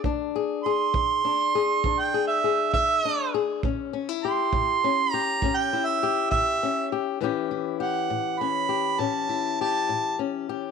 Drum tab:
BD |o--o--o--o--|o--o--o--o--|------------|